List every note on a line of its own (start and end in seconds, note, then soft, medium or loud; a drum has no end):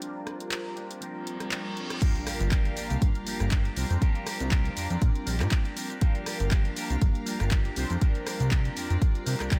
0.00 0.79 F3 medium
0.00 1.37 G3 medium
0.00 0.78 A#3 medium
0.00 1.37 C4 medium
0.00 0.77 D4 medium
0.00 1.37 D4 medium
0.00 2.00 F4 medium
0.00 1.37 F4 medium
0.00 0.75 G4 medium
0.00 1.37 A#4 medium
0.00 2.00 C5 medium
0.00 2.00 D5 medium
0.00 2.00 A#5 medium
0.00 closed hi-hat medium
0.27 cross-stick medium
0.27 closed hi-hat soft
0.40 closed hi-hat medium
0.51 clap loud
0.51 closed hi-hat medium
0.76 1.00 A#3 soft
0.76 1.01 D4 medium
0.76 1.01 G4 medium
0.76 closed hi-hat soft
0.91 closed hi-hat soft
1.01 1.50 F3 medium
1.01 1.51 A#3 medium
1.01 1.52 D4 medium
1.01 1.53 G4 medium
1.01 closed hi-hat medium
1.01 reverse cymbal medium
1.27 closed hi-hat medium
1.40 1.99 G3 medium
1.40 1.99 C4 medium
1.40 1.99 D4 medium
1.40 1.99 F4 medium
1.40 1.99 A#4 medium
1.40 cross-stick medium
1.40 closed hi-hat medium
1.51 2.01 F3 medium
1.51 2.02 A#3 medium
1.51 2.02 D4 medium
1.51 2.03 G4 medium
1.51 clap loud
1.51 closed hi-hat medium
1.77 closed hi-hat soft
1.90 cross-stick medium
1.90 closed hi-hat medium
2.01 2.25 F3 medium
2.01 3.74 G3 medium
2.01 3.74 A#3 medium
2.01 2.26 A#3 medium
2.01 3.74 D4 medium
2.01 2.26 D4 loud
2.01 3.74 F4 medium
2.01 3.75 G4 medium
2.01 2.27 G4 loud
2.01 3.74 A#4 medium
2.01 3.75 F5 medium
2.01 5.98 A#5 medium
2.01 kick loud
2.01 closed hi-hat loud
2.01 crash loud
2.01 impact medium
2.01 shaker soft
2.15 closed hi-hat soft
2.26 2.40 F3 medium
2.26 2.40 A#3 medium
2.26 2.40 D4 medium
2.26 2.38 G4 medium
2.26 cross-stick medium
2.26 open hi-hat loud
2.26 shaker medium
2.39 2.70 G1 loud
2.39 2.51 A#3 soft
2.39 2.51 D4 medium
2.39 2.51 G4 medium
2.39 closed hi-hat soft
2.39 shaker soft
2.51 2.75 F3 medium
2.51 2.76 A#3 loud
2.51 2.77 D4 loud
2.51 2.77 G4 loud
2.51 kick loud
2.51 clap loud
2.51 closed hi-hat medium
2.51 shaker soft
2.65 closed hi-hat soft
2.76 2.90 F3 medium
2.76 2.90 A#3 medium
2.76 2.90 D4 medium
2.76 2.88 G4 medium
2.76 open hi-hat loud
2.76 shaker medium
2.90 2.97 C2 medium
2.90 3.26 A#3 medium
2.90 3.27 D4 medium
2.90 3.26 G4 medium
2.90 closed hi-hat soft
2.90 shaker soft
3.02 3.10 G1 medium
3.02 kick loud
3.02 closed hi-hat loud
3.02 shaker soft
3.15 closed hi-hat soft
3.26 3.40 F3 medium
3.26 3.41 A#3 medium
3.26 3.40 D4 medium
3.26 3.38 G4 medium
3.26 open hi-hat loud
3.26 shaker medium
3.39 3.70 G1 medium
3.39 3.51 A#3 medium
3.39 3.51 D4 medium
3.39 3.51 G4 medium
3.39 cross-stick medium
3.39 closed hi-hat soft
3.39 shaker soft
3.51 3.65 F3 medium
3.51 3.65 A#3 medium
3.51 3.65 D4 loud
3.51 3.63 G4 loud
3.51 kick loud
3.51 clap loud
3.51 closed hi-hat loud
3.51 shaker soft
3.64 3.76 A#3 medium
3.64 3.77 D4 medium
3.64 3.76 G4 medium
3.64 closed hi-hat soft
3.76 3.85 C2 medium
3.76 4.00 F3 medium
3.76 3.99 G3 loud
3.76 4.01 A#3 medium
3.76 3.99 C4 medium
3.76 3.99 D4 medium
3.76 4.01 D4 medium
3.76 5.99 F4 medium
3.76 3.99 F4 medium
3.76 4.02 G4 medium
3.76 3.99 C5 loud
3.76 5.99 D5 medium
3.76 open hi-hat loud
3.76 shaker medium
3.90 3.97 F2 medium
3.90 closed hi-hat soft
3.90 shaker soft
4.01 4.25 F3 medium
4.01 5.37 G3 medium
4.01 4.26 A#3 loud
4.01 5.37 C4 medium
4.01 5.37 D4 medium
4.01 4.27 D4 loud
4.01 5.37 F4 medium
4.01 4.27 G4 loud
4.01 5.38 A#4 loud
4.01 kick loud
4.01 closed hi-hat medium
4.01 shaker soft
4.15 closed hi-hat soft
4.26 4.40 F3 medium
4.26 4.41 A#3 medium
4.26 4.40 D4 medium
4.26 4.38 G4 medium
4.26 cross-stick medium
4.26 open hi-hat loud
4.26 shaker medium
4.39 4.70 C2 loud
4.39 4.51 A#3 soft
4.39 4.51 D4 medium
4.39 4.51 G4 medium
4.39 closed hi-hat soft
4.39 shaker soft
4.51 4.75 F3 loud
4.51 4.76 A#3 loud
4.51 4.77 D4 loud
4.51 4.77 G4 loud
4.51 kick loud
4.51 clap loud
4.51 closed hi-hat loud
4.51 shaker soft
4.65 closed hi-hat soft
4.76 4.88 F2 soft
4.76 4.90 F3 medium
4.76 4.91 A#3 medium
4.76 4.90 D4 medium
4.76 4.88 G4 medium
4.76 open hi-hat loud
4.76 shaker medium
4.90 4.97 F2 medium
4.90 5.26 A#3 medium
4.90 5.27 D4 medium
4.90 5.26 G4 medium
4.90 closed hi-hat soft
4.90 shaker soft
5.02 5.10 A#2 medium
5.02 kick loud
5.02 closed hi-hat loud
5.02 shaker soft
5.15 closed hi-hat soft
5.26 5.42 A#1 medium
5.26 5.40 F3 medium
5.26 5.41 A#3 medium
5.26 5.40 D4 medium
5.26 5.38 G4 medium
5.26 open hi-hat loud
5.26 shaker medium
5.39 5.47 A2 loud
5.39 5.99 G3 medium
5.39 5.51 A#3 medium
5.39 5.99 C4 medium
5.39 5.99 D4 medium
5.39 5.51 D4 medium
5.39 5.99 F4 medium
5.39 5.51 G4 medium
5.39 5.99 A#4 medium
5.39 cross-stick medium
5.39 clap soft
5.39 closed hi-hat soft
5.39 shaker soft
5.51 5.65 F3 medium
5.51 5.65 A#3 loud
5.51 5.65 D4 medium
5.51 5.63 G4 loud
5.51 kick loud
5.51 clap loud
5.51 closed hi-hat loud
5.51 shaker soft
5.65 5.76 A#3 soft
5.65 5.77 D4 medium
5.65 5.76 G4 medium
5.65 closed hi-hat soft
5.76 5.90 F3 medium
5.76 5.90 A#3 medium
5.76 5.90 D4 medium
5.76 5.88 G4 medium
5.76 open hi-hat loud
5.76 shaker medium
5.89 6.00 A#3 soft
5.89 6.01 D4 medium
5.89 6.01 G4 medium
5.89 closed hi-hat soft
5.89 shaker soft
6.01 6.24 F3 loud
6.01 7.74 G3 medium
6.01 7.74 A#3 medium
6.01 6.25 A#3 medium
6.01 7.74 D4 medium
6.01 6.26 D4 loud
6.01 7.74 F4 medium
6.01 7.75 G4 medium
6.01 6.27 G4 loud
6.01 7.74 A#4 loud
6.01 7.75 F5 medium
6.01 9.59 A#5 medium
6.01 kick loud
6.01 closed hi-hat medium
6.01 shaker soft
6.15 closed hi-hat soft
6.26 6.40 F3 medium
6.26 6.40 A#3 medium
6.26 6.39 D4 medium
6.26 6.38 G4 medium
6.26 cross-stick medium
6.26 open hi-hat loud
6.26 shaker medium
6.39 6.70 G1 loud
6.39 6.50 A#3 soft
6.39 6.51 D4 medium
6.39 6.51 G4 medium
6.39 closed hi-hat soft
6.39 shaker soft
6.51 6.75 F3 loud
6.51 6.76 A#3 loud
6.51 6.76 D4 loud
6.51 6.77 G4 loud
6.51 kick loud
6.51 clap loud
6.51 closed hi-hat loud
6.51 shaker soft
6.65 closed hi-hat soft
6.76 6.90 F3 medium
6.76 6.90 A#3 medium
6.76 6.90 D4 medium
6.76 6.88 G4 medium
6.76 open hi-hat loud
6.76 shaker medium
6.89 6.97 C2 medium
6.89 7.26 A#3 medium
6.89 7.27 D4 medium
6.89 7.26 G4 medium
6.89 closed hi-hat soft
6.89 shaker soft
7.02 7.10 G1 medium
7.02 kick loud
7.02 closed hi-hat medium
7.02 shaker soft
7.15 closed hi-hat soft
7.26 7.40 F3 medium
7.26 7.40 A#3 medium
7.26 7.40 D4 medium
7.26 7.38 G4 medium
7.26 open hi-hat loud
7.26 shaker medium
7.39 7.70 G1 loud
7.39 7.50 A#3 medium
7.39 7.51 D4 medium
7.39 7.51 G4 medium
7.39 cross-stick medium
7.39 closed hi-hat soft
7.39 shaker soft
7.51 7.65 F3 medium
7.51 7.65 A#3 medium
7.51 7.65 D4 loud
7.51 7.63 G4 medium
7.51 kick loud
7.51 clap loud
7.51 closed hi-hat medium
7.51 shaker soft
7.64 7.75 A#3 soft
7.64 7.76 D4 medium
7.64 7.76 G4 medium
7.64 closed hi-hat soft
7.75 7.85 C2 medium
7.75 7.90 F3 medium
7.75 7.99 G3 loud
7.75 7.90 A#3 medium
7.75 7.99 C4 medium
7.75 7.99 D4 medium
7.75 7.89 D4 medium
7.75 9.59 F4 medium
7.75 7.99 F4 medium
7.75 7.88 G4 medium
7.75 7.99 C5 loud
7.75 9.59 D5 medium
7.75 open hi-hat loud
7.75 shaker medium
7.89 7.97 F2 loud
7.89 8.00 A#3 soft
7.89 8.01 D4 medium
7.89 8.01 G4 medium
7.89 closed hi-hat soft
7.89 shaker soft
8.01 8.24 F3 medium
8.01 9.37 G3 medium
8.01 8.25 A#3 loud
8.01 9.37 C4 medium
8.01 9.37 D4 medium
8.01 8.26 D4 loud
8.01 9.37 F4 medium
8.01 8.27 G4 medium
8.01 9.37 A#4 loud
8.01 kick loud
8.01 closed hi-hat medium
8.01 shaker soft
8.15 closed hi-hat soft
8.26 8.40 F3 medium
8.26 8.40 A#3 medium
8.26 8.40 D4 medium
8.26 8.38 G4 medium
8.26 cross-stick medium
8.26 open hi-hat loud
8.26 shaker medium
8.39 8.70 C2 loud
8.39 8.50 A#3 soft
8.39 8.51 D4 medium
8.39 8.51 G4 medium
8.39 closed hi-hat soft
8.39 shaker soft
8.51 8.75 F3 loud
8.51 8.76 A#3 loud
8.51 8.77 D4 loud
8.51 8.77 G4 loud
8.51 kick loud
8.51 clap loud
8.51 closed hi-hat medium
8.51 shaker soft
8.65 closed hi-hat soft
8.76 8.88 F2 soft
8.76 8.90 F3 medium
8.76 8.90 A#3 medium
8.76 8.90 D4 medium
8.76 8.88 G4 medium
8.76 open hi-hat loud
8.76 shaker medium
8.89 8.97 F2 medium
8.89 9.26 A#3 medium
8.89 9.27 D4 medium
8.89 9.26 G4 medium
8.89 closed hi-hat soft
8.89 shaker soft
9.02 kick loud
9.02 closed hi-hat medium
9.02 shaker soft
9.15 closed hi-hat soft
9.26 9.35 C3 loud
9.26 9.40 F3 medium
9.26 9.40 A#3 medium
9.26 9.40 D4 medium
9.26 9.39 G4 medium
9.26 open hi-hat loud
9.26 shaker medium
9.40 9.50 C2 soft
9.40 9.49 G3 loud
9.40 9.51 A#3 medium
9.40 9.49 C4 medium
9.40 9.49 D4 medium
9.40 9.51 D4 medium
9.40 9.49 F4 medium
9.40 9.51 G4 medium
9.40 9.49 A#4 loud
9.40 cross-stick medium
9.40 clap soft
9.40 closed hi-hat soft
9.40 shaker soft
9.51 9.59 C2 medium
9.51 9.59 F3 medium
9.51 9.59 G3 loud
9.51 9.59 A#3 medium
9.51 9.59 C4 loud
9.51 9.59 D4 medium
9.51 9.59 F4 medium
9.51 9.59 G4 loud
9.51 9.59 D5 loud
9.51 kick loud
9.51 clap loud
9.51 closed hi-hat medium
9.51 shaker soft